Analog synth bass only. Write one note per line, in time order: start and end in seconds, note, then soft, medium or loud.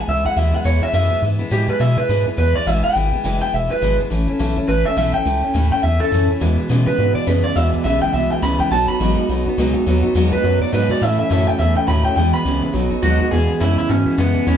0.08 0.24 C#2 medium
0.25 0.30 C#2 medium
0.36 0.53 D#2 loud
0.53 0.58 D#2 medium
0.65 0.81 E2 loud
0.82 0.87 E2 medium
0.93 1.10 F#2 medium
1.11 1.16 F#2 medium
1.22 1.39 G#2 medium
1.40 1.44 G#2 medium
1.51 1.68 A2 medium
1.68 1.73 A2 medium
1.80 1.97 B2 medium
1.97 2.02 B2 medium
2.09 2.26 G#2 medium
2.26 2.31 G#2 medium
2.38 2.54 E2 loud
2.55 2.60 E2 medium
2.67 2.83 A1 medium
2.84 2.89 A1 medium
2.96 3.12 G#1 medium
3.13 3.18 G#1 medium
3.25 3.41 F#1 medium
3.42 3.47 F#1 medium
3.53 3.69 E1 loud
3.70 3.76 E1 soft
3.82 3.99 G#1 medium
4.00 4.04 G#1 medium
4.11 4.28 A1 medium
4.28 4.33 A1 medium
4.40 4.56 B1 loud
4.57 4.61 B1 medium
4.68 4.85 A1 loud
4.86 4.90 A1 medium
4.97 5.14 B1 medium
5.14 5.19 B1 medium
5.26 5.43 C#2 medium
5.43 5.48 C#2 medium
5.55 5.71 D#2 loud
5.72 5.76 D#2 medium
5.83 6.00 E2 medium
6.00 6.05 E2 medium
6.12 6.29 F#2 medium
6.29 6.34 F#2 medium
6.41 6.58 E2 medium
6.58 6.63 E2 medium
6.70 6.87 B2 medium
6.87 6.92 B2 medium
6.98 7.15 G#2 loud
7.16 7.20 G#2 medium
7.27 7.43 F#2 loud
7.45 7.50 F#2 soft
7.56 7.73 E2 medium
7.73 7.78 E2 medium
7.85 8.02 B1 medium
8.02 8.07 B1 medium
8.14 8.30 C2 medium
8.30 8.35 C2 medium
8.42 8.59 C#2 medium
8.59 8.64 C#2 medium
8.71 8.87 B1 medium
8.88 8.94 B1 soft
9.00 9.16 A1 loud
9.17 9.22 A1 medium
9.29 9.45 B1 medium
9.46 9.50 B1 medium
9.58 9.74 C#2 medium
9.75 9.80 C#2 medium
9.87 10.03 D#2 medium
10.04 10.09 D#2 medium
10.15 10.32 E2 medium
10.33 10.37 E2 medium
10.44 10.60 F#2 medium
10.61 10.66 F#2 medium
10.73 10.89 G#2 medium
10.90 10.94 G#2 medium
11.02 11.18 A2 medium
11.19 11.24 A2 medium
11.30 11.47 F#2 loud
11.48 11.52 F#2 medium
11.59 11.76 E2 medium
11.77 11.81 E2 medium
11.88 12.04 D#2 loud
12.05 12.10 D#2 medium
12.17 12.33 E2 loud
12.34 12.38 E2 medium
12.45 12.62 C#2 medium
12.63 12.67 C#2 medium
12.74 12.90 B1 medium
12.91 12.96 B1 medium
13.03 13.20 D#2 medium
13.20 13.25 D#2 medium
13.32 13.49 E2 medium
13.49 13.54 E2 medium
13.61 13.77 F#2 medium
13.78 13.83 F#2 medium
13.90 14.06 G#2 medium
14.07 14.11 G#2 medium
14.18 14.35 F#2 medium
14.36 14.40 F#2 medium
14.47 14.57 E2 medium